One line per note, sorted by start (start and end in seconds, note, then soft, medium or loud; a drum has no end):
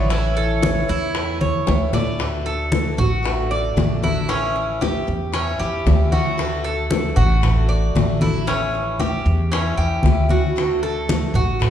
0.00 0.83 A1 medium
0.00 0.13 F#3 medium
0.00 0.15 D5 medium
0.09 0.61 E3 medium
0.09 0.62 A3 medium
0.09 0.62 C#4 medium
0.09 0.36 E4 medium
0.09 0.62 E4 medium
0.09 high bongo medium
0.09 high conga soft
0.14 1.69 C#5 medium
0.37 0.88 A4 medium
0.37 high bongo soft
0.37 high conga soft
0.62 0.88 E3 medium
0.62 0.89 A3 soft
0.62 0.89 C#4 medium
0.62 0.89 E4 medium
0.62 high bongo medium
0.62 high conga loud
0.88 1.64 E2 medium
0.88 1.40 E4 medium
0.88 muted steel-string acoustic guitar stroke medium
0.88 high bongo soft
0.88 high conga soft
1.15 1.65 E3 medium
1.15 1.66 A3 medium
1.15 1.67 C#4 medium
1.15 1.67 E4 medium
1.15 high bongo medium
1.15 high conga soft
1.41 1.92 C#5 medium
1.41 high conga medium
1.67 2.92 D2 medium
1.67 1.92 E3 medium
1.67 1.93 A3 medium
1.67 1.93 C#4 medium
1.67 1.92 E4 medium
1.67 high bongo medium
1.67 high conga medium
1.93 2.18 A3 medium
1.93 2.19 C#4 medium
1.93 2.19 E4 medium
1.93 2.19 D5 medium
1.93 low bongo medium
1.93 low conga medium
2.19 2.71 D3 medium
2.19 2.71 A3 medium
2.19 2.71 D4 medium
2.19 2.72 F#4 medium
2.19 high bongo medium
2.19 high conga soft
2.46 2.97 A4 medium
2.46 high bongo soft
2.46 high conga soft
2.72 2.96 D3 medium
2.72 2.96 A3 medium
2.72 2.97 D4 medium
2.72 2.97 F#4 medium
2.72 high bongo medium
2.72 high conga loud
2.97 3.73 A1 loud
2.97 3.49 F#4 medium
2.97 muted steel-string acoustic guitar stroke medium
2.97 high conga soft
2.97 low conga medium
3.23 3.75 D3 medium
3.23 3.76 A3 medium
3.23 3.76 D4 medium
3.23 3.76 F#4 medium
3.23 high bongo medium
3.23 high conga soft
3.51 4.02 D5 medium
3.51 high bongo soft
3.51 high conga soft
3.76 5.01 A1 medium
3.76 4.02 D3 medium
3.76 4.02 A3 medium
3.76 4.02 D4 medium
3.76 4.01 F#4 medium
3.76 high bongo soft
3.76 low bongo medium
3.76 high conga medium
4.02 4.29 A3 medium
4.02 4.28 D4 medium
4.02 4.29 E4 medium
4.02 4.28 F#4 medium
4.02 high bongo soft
4.02 high conga medium
4.28 4.80 E3 medium
4.28 4.80 G3 medium
4.28 4.80 C#4 medium
4.28 4.81 C#4 medium
4.28 4.81 E4 medium
4.28 high bongo medium
4.28 high conga soft
4.56 high bongo soft
4.56 high conga soft
4.81 5.06 E3 medium
4.81 5.07 C#4 soft
4.81 5.07 E4 medium
4.81 5.32 G4 medium
4.81 high bongo medium
4.81 high conga medium
5.07 5.57 E2 medium
5.07 muted steel-string acoustic guitar stroke medium
5.32 5.84 E3 medium
5.32 5.85 G3 medium
5.32 5.85 C#4 medium
5.32 5.59 C#4 medium
5.32 5.85 E4 medium
5.32 high bongo medium
5.32 high conga soft
5.60 5.84 E2 medium
5.60 6.10 G4 medium
5.60 high bongo soft
5.60 high conga soft
5.86 7.10 D2 medium
5.86 6.11 E3 medium
5.86 6.12 G3 medium
5.86 6.12 C#4 medium
5.86 6.11 E4 medium
5.86 high bongo soft
5.86 low bongo medium
5.86 high conga medium
6.12 6.38 G3 medium
6.12 6.38 C#4 medium
6.12 6.37 E4 medium
6.12 6.63 F#4 medium
6.12 high bongo soft
6.12 high conga medium
6.38 6.89 D3 medium
6.38 6.90 A3 medium
6.38 6.90 D4 medium
6.38 6.90 F#4 medium
6.38 high bongo medium
6.38 high conga soft
6.64 7.15 A4 medium
6.64 high bongo soft
6.64 high conga soft
6.90 7.15 D3 medium
6.90 7.15 A3 soft
6.90 7.16 D4 medium
6.90 7.16 F#4 medium
6.90 high bongo medium
6.90 high conga medium
7.16 7.91 A1 loud
7.16 7.67 F#4 medium
7.16 muted steel-string acoustic guitar stroke medium
7.16 high conga soft
7.16 low conga medium
7.42 7.93 D3 medium
7.42 7.94 A3 medium
7.42 7.94 D4 medium
7.42 7.95 F#4 medium
7.42 high bongo medium
7.42 high conga soft
7.42 low conga medium
7.69 8.20 D5 medium
7.69 high bongo soft
7.69 high conga soft
7.95 9.19 A1 medium
7.95 8.20 D3 soft
7.95 8.21 A3 medium
7.95 8.21 D4 medium
7.95 8.20 F#4 medium
7.95 high bongo soft
7.95 low bongo medium
7.95 high conga medium
8.21 8.47 A3 medium
8.21 8.47 D4 medium
8.21 8.47 E4 medium
8.21 8.46 F#4 medium
8.21 high bongo soft
8.21 high conga medium
8.47 8.98 E3 medium
8.47 8.99 G3 medium
8.47 8.98 C#4 medium
8.47 8.99 C#4 medium
8.47 9.00 E4 medium
8.47 high bongo medium
8.47 high conga soft
8.74 high bongo soft
8.74 high conga soft
8.99 9.25 E3 soft
8.99 9.25 G3 medium
8.99 9.25 C#4 medium
8.99 9.26 E4 medium
8.99 9.50 G4 medium
8.99 high bongo medium
8.99 high conga medium
9.26 9.74 E2 loud
9.26 muted steel-string acoustic guitar stroke medium
9.52 10.03 E3 medium
9.52 10.03 G3 medium
9.52 9.77 C#4 medium
9.52 10.04 C#4 medium
9.52 10.04 E4 medium
9.52 high bongo medium
9.52 high conga soft
9.78 10.02 E2 medium
9.78 10.29 G4 medium
9.78 high bongo soft
9.78 high conga soft
10.03 11.28 D2 medium
10.03 10.29 E3 medium
10.03 10.29 G3 medium
10.03 10.29 C#4 medium
10.03 10.28 E4 medium
10.03 high bongo soft
10.03 low bongo medium
10.03 high conga medium
10.29 10.56 G3 medium
10.29 10.55 C#4 medium
10.29 10.55 E4 medium
10.29 10.81 F#4 medium
10.29 high bongo soft
10.29 high conga medium
10.56 11.07 D3 medium
10.56 11.08 A3 medium
10.56 11.08 D4 medium
10.56 11.08 F#4 medium
10.56 high bongo medium
10.56 high conga soft
10.83 11.33 A4 medium
10.83 high bongo soft
10.83 high conga soft
11.08 11.33 D3 soft
11.08 11.33 A3 medium
11.08 11.33 D4 medium
11.08 11.34 F#4 medium
11.08 high bongo medium
11.08 high conga loud
11.34 11.70 A1 loud
11.34 11.70 F#4 medium
11.34 muted steel-string acoustic guitar stroke medium
11.34 high conga soft
11.34 low conga medium
11.59 11.70 D3 medium
11.59 11.70 A3 medium
11.59 11.70 D4 medium
11.59 11.70 F#4 medium
11.59 high bongo medium
11.59 high conga soft
11.59 low conga medium